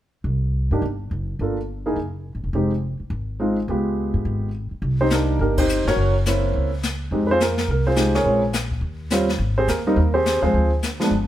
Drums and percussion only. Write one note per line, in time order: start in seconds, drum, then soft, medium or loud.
4.82 brush sweep soft
5.10 snare medium
5.10 hi-hat pedal soft
5.40 brush sweep soft
5.57 kick medium
5.57 ride medium
5.69 hi-hat pedal medium
5.87 snare soft
5.98 brush sweep soft
6.26 snare soft
6.26 hi-hat pedal medium
6.55 brush sweep soft
6.83 snare soft
6.83 hi-hat pedal soft
7.12 brush sweep soft
7.40 snare soft
7.40 hi-hat pedal medium
7.58 snare soft
7.69 brush sweep soft
7.96 snare medium
7.96 hi-hat pedal soft
8.14 snare soft
8.25 brush sweep soft
8.53 snare medium
8.53 hi-hat pedal medium
8.71 kick soft
8.82 brush sweep soft
9.10 snare soft
9.10 hi-hat pedal soft
9.29 snare soft
9.40 brush sweep soft
9.68 snare medium
9.68 hi-hat pedal medium
9.97 brush sweep soft
10.26 snare soft
10.26 hi-hat pedal soft
10.54 brush sweep soft
10.83 snare soft
10.83 hi-hat pedal soft
11.00 snare soft
11.11 brush sweep medium